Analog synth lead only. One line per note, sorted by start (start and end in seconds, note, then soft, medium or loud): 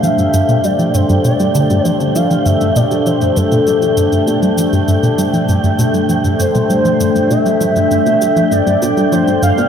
0.03 0.65 E5 loud
0.64 0.96 D5 loud
0.94 1.24 C5 medium
1.25 1.87 D5 loud
1.87 2.17 C5 loud
2.15 2.47 F5 medium
2.46 2.78 E5 loud
2.76 3.08 D5 medium
3.06 3.38 C5 medium
3.37 4.28 A4 medium
6.40 7.32 C5 medium
7.31 8.53 E5 loud
8.52 9.14 D5 loud
9.13 9.42 C5 medium
9.43 9.69 F5 loud